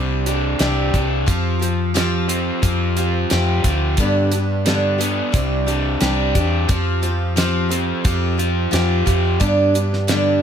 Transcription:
0.00 0.53 C2 medium
0.00 1.28 C3 medium
0.00 0.27 G3 medium
0.00 1.27 G3 medium
0.00 0.27 C4 medium
0.00 0.27 D4 medium
0.00 0.25 G4 medium
0.00 0.60 G4 medium
0.26 0.59 C4 soft
0.26 0.60 D4 soft
0.26 0.60 G4 medium
0.26 closed hi-hat medium
0.59 0.90 C2 medium
0.59 0.94 C3 medium
0.59 0.94 G3 medium
0.59 0.94 C4 medium
0.59 0.93 D4 medium
0.59 0.93 G4 medium
0.59 snare medium
0.59 closed hi-hat medium
0.94 1.24 C2 medium
0.94 1.26 C4 soft
0.94 1.27 D4 medium
0.94 1.27 G4 medium
0.94 kick medium
0.94 closed hi-hat medium
1.26 2.50 F2 medium
1.26 1.61 F3 medium
1.26 1.60 C4 medium
1.26 1.60 F4 medium
1.26 1.58 G4 medium
1.26 kick loud
1.26 closed hi-hat medium
1.59 1.93 C4 soft
1.59 1.94 F4 medium
1.59 1.94 G4 medium
1.59 closed hi-hat medium
1.94 2.29 F3 medium
1.94 2.28 C4 medium
1.94 2.27 F4 medium
1.94 2.27 G4 medium
1.94 snare loud
1.94 closed hi-hat medium
2.28 2.62 C4 soft
2.28 2.62 F4 soft
2.28 2.63 G4 soft
2.28 closed hi-hat medium
2.62 3.24 F2 medium
2.62 2.97 F3 medium
2.62 2.97 C4 medium
2.62 2.97 F4 medium
2.62 2.96 G4 medium
2.62 kick medium
2.62 closed hi-hat medium
2.97 3.31 C4 soft
2.97 3.32 F4 soft
2.97 3.31 G4 medium
2.97 closed hi-hat medium
3.30 3.62 F2 medium
3.30 3.65 F3 medium
3.30 3.65 C4 medium
3.30 3.65 F4 medium
3.30 3.64 G4 medium
3.30 snare medium
3.30 closed hi-hat medium
3.64 3.95 D2 medium
3.64 4.00 C4 soft
3.64 3.99 F4 medium
3.64 3.99 G4 medium
3.64 kick medium
3.64 closed hi-hat medium
3.97 5.20 G2 medium
3.97 4.33 G2 medium
3.97 4.33 D3 medium
3.97 4.33 G3 medium
3.97 4.32 B3 medium
3.97 4.31 D4 medium
3.97 4.32 G4 medium
3.97 kick loud
3.97 closed hi-hat medium
4.32 4.65 G3 soft
4.32 4.65 B3 soft
4.32 4.65 D4 medium
4.32 4.66 G4 medium
4.32 closed hi-hat medium
4.66 5.00 G2 medium
4.66 5.00 D3 medium
4.66 4.99 G3 medium
4.66 4.99 B3 medium
4.66 4.98 D4 medium
4.66 4.97 G4 medium
4.66 snare loud
4.66 closed hi-hat medium
4.98 5.31 G3 soft
4.98 5.33 B3 medium
4.98 5.33 D4 soft
4.98 5.33 G4 medium
4.98 closed hi-hat medium
5.32 5.95 C2 medium
5.32 6.69 C3 medium
5.32 5.67 G3 medium
5.32 5.67 C4 medium
5.32 5.66 D4 medium
5.32 5.65 G4 medium
5.32 kick loud
5.32 closed hi-hat medium
5.66 6.00 C4 soft
5.66 6.01 D4 medium
5.66 6.01 G4 medium
5.66 closed hi-hat soft
6.00 6.32 C2 medium
6.00 6.35 C3 medium
6.00 6.35 G3 medium
6.00 6.35 C4 medium
6.00 6.35 D4 medium
6.00 6.34 G4 medium
6.00 snare medium
6.00 closed hi-hat medium
6.35 6.66 E2 medium
6.35 6.68 C4 soft
6.35 6.68 D4 medium
6.35 6.68 G4 medium
6.35 kick medium
6.35 closed hi-hat medium
6.68 7.91 F2 medium
6.68 7.03 F3 medium
6.68 7.02 C4 medium
6.68 7.01 F4 medium
6.68 7.01 G4 medium
6.68 kick loud
6.68 closed hi-hat medium
7.02 7.36 C4 medium
7.02 7.35 F4 medium
7.02 7.36 G4 medium
7.02 closed hi-hat medium
7.36 7.70 F3 medium
7.36 7.69 C4 medium
7.36 7.69 F4 medium
7.36 7.68 G4 medium
7.36 snare loud
7.36 closed hi-hat medium
7.69 8.03 C4 soft
7.69 8.04 F4 medium
7.69 8.04 G4 medium
7.69 closed hi-hat medium
8.04 8.65 F2 medium
8.04 8.38 F3 medium
8.04 8.37 C4 medium
8.04 8.37 F4 medium
8.04 8.36 G4 medium
8.04 kick loud
8.04 closed hi-hat medium
8.38 8.71 C4 soft
8.38 8.70 F4 soft
8.38 8.71 G4 medium
8.38 closed hi-hat medium
8.71 9.03 F2 medium
8.71 9.06 F3 medium
8.71 9.06 C4 medium
8.71 9.06 F4 medium
8.71 9.04 G4 medium
8.71 snare medium
8.71 closed hi-hat medium
9.06 9.37 F2 medium
9.06 9.39 C4 soft
9.06 9.40 F4 medium
9.06 9.39 G4 medium
9.06 kick medium
9.06 closed hi-hat medium
9.40 9.74 G2 medium
9.40 10.42 G2 medium
9.40 9.74 D3 medium
9.40 9.74 G3 medium
9.40 9.74 B3 medium
9.40 9.73 D4 medium
9.40 9.73 G4 medium
9.40 kick loud
9.40 closed hi-hat medium
9.74 10.07 G3 soft
9.74 10.07 B3 soft
9.74 10.08 D4 soft
9.74 10.08 G4 medium
9.74 closed hi-hat medium
9.93 snare soft
10.07 10.41 G2 medium
10.07 10.42 D3 medium
10.07 10.42 G3 medium
10.07 10.42 B3 medium
10.07 10.42 D4 medium
10.07 10.42 G4 medium
10.07 snare loud
10.07 closed hi-hat medium

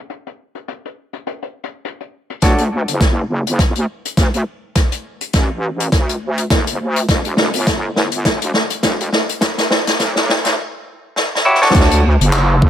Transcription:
0.10 closed hi-hat medium
0.27 closed hi-hat soft
0.55 closed hi-hat medium
0.68 closed hi-hat medium
0.85 closed hi-hat soft
1.13 closed hi-hat medium
1.27 closed hi-hat medium
1.42 closed hi-hat soft
1.64 closed hi-hat medium
1.85 closed hi-hat medium
2.00 closed hi-hat soft
2.30 closed hi-hat medium
2.42 2.85 D2 medium
2.42 2.62 D4 medium
2.42 2.62 F#4 medium
2.42 2.62 A4 medium
2.42 2.62 C#5 medium
2.42 kick medium
2.42 snare soft
2.42 closed hi-hat medium
2.58 closed hi-hat soft
2.88 3.73 F#1 medium
2.88 closed hi-hat medium
3.01 kick medium
3.01 snare medium
3.01 closed hi-hat medium
3.47 closed hi-hat medium
3.59 kick loud
3.59 snare medium
3.59 closed hi-hat medium
3.75 3.86 D2 medium
3.75 closed hi-hat soft
4.05 closed hi-hat medium
4.17 4.44 D2 medium
4.17 kick medium
4.17 snare medium
4.17 closed hi-hat medium
4.34 closed hi-hat medium
4.75 kick medium
4.75 snare medium
4.75 closed hi-hat medium
4.92 closed hi-hat medium
5.21 closed hi-hat medium
5.33 5.90 A1 loud
5.33 kick medium
5.33 snare medium
5.33 closed hi-hat medium
5.80 closed hi-hat medium
5.92 6.48 D2 medium
5.92 kick medium
5.92 snare medium
5.92 closed hi-hat medium
6.09 closed hi-hat medium
6.38 closed hi-hat medium
6.50 6.77 F#1 loud
6.50 kick medium
6.50 snare medium
6.50 closed hi-hat medium
6.67 closed hi-hat medium
6.80 7.07 D2 loud
6.96 closed hi-hat medium
7.09 7.51 E1 medium
7.09 kick loud
7.09 snare medium
7.09 closed hi-hat medium
7.25 closed hi-hat medium
7.37 snare medium
7.53 8.39 G1 loud
7.53 closed hi-hat medium
7.55 closed hi-hat medium
7.55 closed hi-hat soft
7.60 closed hi-hat soft
7.62 closed hi-hat soft
7.64 kick medium
7.64 snare medium
7.64 closed hi-hat soft
7.67 closed hi-hat medium
7.96 snare medium
8.12 closed hi-hat medium
8.25 kick loud
8.25 snare medium
8.25 closed hi-hat medium
8.41 8.52 E1 medium
8.41 closed hi-hat medium
8.54 snare medium
8.70 closed hi-hat medium
8.83 9.10 E1 loud
8.83 kick loud
8.83 snare medium
8.83 closed hi-hat medium
9.00 closed hi-hat soft
9.12 snare medium
9.29 closed hi-hat medium
9.41 kick loud
9.41 snare medium
9.41 closed hi-hat medium
9.58 snare medium
9.58 closed hi-hat medium
9.71 snare loud
9.87 snare medium
9.87 closed hi-hat medium
9.99 10.56 B1 medium
9.99 kick loud
9.99 snare medium
9.99 closed hi-hat medium
10.16 snare medium
10.29 snare loud
10.45 snare medium
10.45 closed hi-hat medium
11.16 snare medium
11.35 snare medium
11.45 11.59 E4 medium
11.45 11.59 F#4 medium
11.45 11.59 G4 medium
11.45 11.59 C#5 medium
11.55 snare soft
11.62 12.04 D4 medium
11.62 12.04 F#4 medium
11.62 12.04 A4 medium
11.62 12.04 C#5 loud
11.62 snare soft
11.65 snare medium
11.70 snare medium
11.74 12.18 D2 loud
11.74 kick loud
11.74 snare medium
11.74 closed hi-hat medium
11.74 crash loud
11.80 snare medium
11.91 closed hi-hat medium
12.20 12.70 F#1 loud
12.20 closed hi-hat medium
12.32 clap loud
12.32 closed hi-hat medium
12.62 kick loud

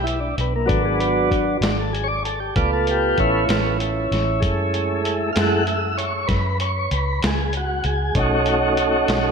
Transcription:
0.00 0.33 B1 medium
0.00 0.20 E4 medium
0.07 closed hi-hat medium
0.21 0.36 D4 medium
0.38 0.66 B1 medium
0.38 0.54 B3 medium
0.38 closed hi-hat medium
0.56 0.69 A#3 medium
0.66 1.58 G#1 medium
0.66 1.57 F#3 medium
0.66 0.83 A3 medium
0.66 0.99 B3 medium
0.66 1.58 D4 medium
0.66 kick loud
0.66 closed hi-hat medium
0.85 0.99 G#3 medium
1.00 1.30 B3 medium
1.00 closed hi-hat medium
1.31 kick medium
1.31 closed hi-hat medium
1.61 2.51 G#1 medium
1.61 1.77 D5 loud
1.61 snare loud
1.61 closed hi-hat medium
1.80 1.93 A4 medium
1.93 2.08 G#4 medium
1.93 closed hi-hat medium
2.04 2.08 C#5 medium
2.08 2.23 D5 medium
2.25 2.39 A4 medium
2.25 closed hi-hat medium
2.40 2.55 G4 medium
2.56 3.14 C#2 medium
2.56 3.45 A3 medium
2.56 3.45 B3 soft
2.56 3.45 F4 medium
2.56 2.71 D5 medium
2.56 kick loud
2.56 closed hi-hat medium
2.73 2.87 A4 medium
2.87 3.19 G4 medium
2.87 closed hi-hat medium
3.18 3.47 A1 medium
3.18 5.01 C#4 medium
3.18 4.41 E4 loud
3.18 kick medium
3.18 closed hi-hat medium
3.49 4.07 A1 medium
3.49 3.77 A3 soft
3.49 3.77 B3 soft
3.49 3.78 F4 medium
3.49 snare loud
3.49 closed hi-hat medium
3.80 closed hi-hat medium
4.11 4.40 A1 medium
4.11 snare soft
4.11 closed hi-hat medium
4.40 5.31 F#2 medium
4.40 5.30 G#3 soft
4.40 5.31 A3 soft
4.40 5.31 E4 medium
4.40 kick loud
4.40 closed hi-hat medium
4.74 closed hi-hat medium
5.05 closed hi-hat medium
5.33 6.25 F#2 medium
5.33 5.63 G#3 soft
5.33 5.63 A3 soft
5.33 5.36 F5 medium
5.33 closed hi-hat medium
5.37 5.64 E4 soft
5.37 5.66 F#5 loud
5.37 snare loud
5.67 5.97 E5 medium
5.67 closed hi-hat medium
5.98 6.28 C#5 medium
5.98 closed hi-hat medium
6.27 6.87 F#2 medium
6.27 6.58 B4 medium
6.27 kick loud
6.27 snare soft
6.27 closed hi-hat medium
6.60 6.90 C#5 medium
6.60 closed hi-hat medium
6.91 7.20 C#2 medium
6.91 7.22 B4 medium
6.91 closed hi-hat medium
7.22 7.81 C#2 medium
7.22 snare loud
7.22 closed hi-hat medium
7.27 7.55 G#4 medium
7.53 closed hi-hat medium
7.57 7.85 F#4 medium
7.84 8.13 C#2 medium
7.84 8.15 G#4 medium
7.84 closed hi-hat medium
8.15 9.04 B1 medium
8.15 9.31 A3 medium
8.15 9.31 C#4 soft
8.15 9.31 D#4 medium
8.15 kick loud
8.15 closed hi-hat medium
8.19 8.47 F#4 medium
8.46 9.31 F#4 medium
8.46 closed hi-hat medium
8.77 closed hi-hat medium
9.08 9.31 B1 medium
9.08 snare loud
9.08 closed hi-hat medium

